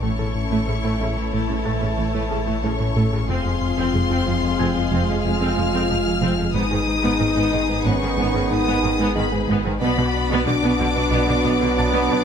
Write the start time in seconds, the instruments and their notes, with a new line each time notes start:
0.02 double bass section A1, sub bass A1, cello section A2, analog synth bass A2, trombone section E3 A3, synth arpeggio sound A3, viola section A3 E4, french horn section C#4, violin section A4 C#5 C#6
0.18 analog synth bass A2, cello section A2, viola section C#3, synth arpeggio sound A4
0.35 analog synth bass A2
0.51 analog synth bass A2, cello section A2, viola section A3, synth arpeggio sound A3
0.68 double bass section A1, analog synth bass A2, cello section A2, viola section C#3, synth arpeggio sound C#4
0.84 analog synth bass A2, cello section A2, viola section A3, synth arpeggio sound A3
1.00 double bass section A1, cello section A2, viola section C#3, analog synth bass A3, synth arpeggio sound E4
1.16 cello section A2, analog synth bass A2, viola section E3, synth arpeggio sound A4
1.32 double bass section A1, cello section A2, analog synth bass A2, viola section A3, french horn section A3, synth arpeggio sound A3, violin section A5
1.49 cello section A2, analog synth bass A2, viola section C#3, synth arpeggio sound C#4
1.64 double bass section A1, cello section A2, analog synth bass A2, viola section A3, synth arpeggio sound A3, grand piano A5 A6
1.80 cello section A2, analog synth bass A2, viola section C#3, synth arpeggio sound C#4
1.96 double bass section A1, cello section A2, analog synth bass A2, viola section E3, synth arpeggio sound C#4
2.12 analog synth bass A2, cello section A2, viola section A3, synth arpeggio sound A3
2.29 double bass section A1, cello section A2, analog synth bass A2, viola section C#3, synth arpeggio sound A4
2.46 cello section A2, analog synth bass A2, viola section A3, synth arpeggio sound A3
2.63 double bass section A1, cello section A2, viola section C#3, analog synth bass A3, french horn section C#4, synth arpeggio sound E4, violin section C#6
2.79 analog synth bass A2, cello section A2, viola section E3, synth arpeggio sound A4
2.95 double bass section A1, cello section A2, analog synth bass A2, viola section A3, synth arpeggio sound A3
3.12 analog synth bass A2, cello section A2, viola section C#3, synth arpeggio sound A4
3.28 double bass section F1, sub bass F1, analog synth bass F2, cello section F2, trombone section F3 G#3, synth arpeggio sound F3, viola section C4 F4, french horn section C4, violin section G#4 F5 C6
3.45 analog synth bass F2, cello section F2, viola section F3, synth arpeggio sound F4
3.62 analog synth bass F2
3.77 analog synth bass F2, cello section F2, synth arpeggio sound F3, viola section C4
3.94 double bass section F1, analog synth bass F2, cello section F2, viola section F3, synth arpeggio sound G#3
4.10 analog synth bass F2, cello section F2, synth arpeggio sound F3, viola section C4
4.26 double bass section F1, cello section F2, analog synth bass F3, viola section F3, synth arpeggio sound C4
4.42 analog synth bass F2, cello section F2, viola section G#3, synth arpeggio sound F4
4.59 double bass section F1, analog synth bass F2, cello section F2, synth arpeggio sound F3, viola section C4, grand piano G#5 G#6
4.75 cello section F2, analog synth bass F2, viola section F3, synth arpeggio sound G#3
4.92 double bass section F1, analog synth bass F2, cello section F2, synth arpeggio sound F3, viola section C4
5.08 analog synth bass F2, cello section F2, viola section F3, synth arpeggio sound G#3
5.24 double bass section F1, analog synth bass F2, cello section F2, synth arpeggio sound G#3, viola section G#3, french horn section F4, violin section F6
5.40 analog synth bass F2, cello section F2, synth arpeggio sound F3, viola section C4
5.57 double bass section F1, analog synth bass F2, cello section F2, viola section F3, synth arpeggio sound F4
5.73 analog synth bass F2, cello section F2, synth arpeggio sound F3, viola section C4
5.89 double bass section F1, cello section F2, viola section F3, analog synth bass F3, synth arpeggio sound C4
6.06 cello section F2, analog synth bass F2, viola section G#3, synth arpeggio sound F4
6.22 double bass section F1, analog synth bass F2, cello section F2, synth arpeggio sound F3, viola section C4
6.37 analog synth bass F2, cello section F2, viola section F3, synth arpeggio sound F4
6.54 double bass section G#1, sub bass G#1, cello section G#2, analog synth bass G#2, trombone section D#3 B3, synth arpeggio sound G#3, viola section B3 D#4, french horn section D#4, violin section G#4 B4 D#6
6.71 analog synth bass G#2, cello section G#2, viola section D#3, synth arpeggio sound G#4
6.87 analog synth bass G#2
7.03 analog synth bass G#2, cello section G#2, synth arpeggio sound G#3, viola section B3
7.19 double bass section G#1, analog synth bass G#2, cello section G#2, viola section D#3, synth arpeggio sound B3
7.36 analog synth bass G#2, cello section G#2, synth arpeggio sound G#3, viola section B3
7.52 double bass section G#1, cello section G#2, viola section D#3, analog synth bass G#3, synth arpeggio sound D#4
7.68 analog synth bass G#2, cello section G#2, viola section G#3, synth arpeggio sound G#4
7.84 double bass section G#1, analog synth bass G#2, cello section G#2, synth arpeggio sound G#3, viola section B3, french horn section C#4, violin section C#6
8.00 analog synth bass G#2, cello section G#2, viola section D#3, synth arpeggio sound B3
8.17 double bass section G#1, analog synth bass G#2, cello section G#2, synth arpeggio sound G#3, viola section B3
8.34 analog synth bass G#2, cello section G#2, viola section D#3, synth arpeggio sound B3
8.50 double bass section G#1, analog synth bass G#2, cello section G#2, viola section G#3, synth arpeggio sound B3, french horn section D#4, violin section D#6
8.66 analog synth bass G#2, cello section G#2, synth arpeggio sound G#3, viola section B3
8.83 double bass section G#1, analog synth bass G#2, cello section G#2, viola section D#3, synth arpeggio sound G#4
8.99 analog synth bass G#2, cello section G#2, synth arpeggio sound G#3, viola section B3
9.15 double bass section G#1, cello section G#2, viola section D#3, analog synth bass G#3, french horn section B3, synth arpeggio sound D#4, violin section B5
9.32 analog synth bass G#2, cello section G#2, viola section G#3, synth arpeggio sound G#4
9.49 double bass section G#1, cello section G#2, analog synth bass G#2, synth arpeggio sound G#3, viola section B3
9.65 cello section G#2, analog synth bass G#2, viola section D#3, synth arpeggio sound G#4
9.80 sub bass B1, double bass section B1, analog synth bass B2, cello section B2, trombone section F#3 B3, french horn section B3, synth arpeggio sound B3, viola section B3 D4, violin section F#4 D5 B5
9.97 cello section B2, analog synth bass B2, viola section D3, synth arpeggio sound B4
10.14 analog synth bass B2
10.30 analog synth bass B2, cello section B2, synth arpeggio sound B3, viola section B3
10.46 double bass section B1, analog synth bass B2, cello section B2, viola section D3, synth arpeggio sound D4, french horn section D4, violin section D6
10.62 analog synth bass B2, cello section B2, synth arpeggio sound B3, viola section B3
10.79 double bass section B1, cello section B2, viola section D3, analog synth bass B3, synth arpeggio sound F#4
10.95 analog synth bass B2, cello section B2, viola section F#3, synth arpeggio sound B4
11.11 double bass section B1, analog synth bass B2, cello section B2, viola section B3, synth arpeggio sound B3
11.27 analog synth bass B2, cello section B2, viola section D3, synth arpeggio sound D4
11.44 double bass section B1, analog synth bass B2, cello section B2, viola section B3, synth arpeggio sound B3
11.60 analog synth bass B2, cello section B2, viola section D3, synth arpeggio sound D4
11.76 double bass section B1, analog synth bass B2, cello section B2, viola section F#3, french horn section D4, synth arpeggio sound D4, grand piano A5 A6, violin section D6
11.93 analog synth bass B2, cello section B2, viola section B3, synth arpeggio sound B3
12.09 double bass section B1, analog synth bass B2, cello section B2, viola section D3, synth arpeggio sound B4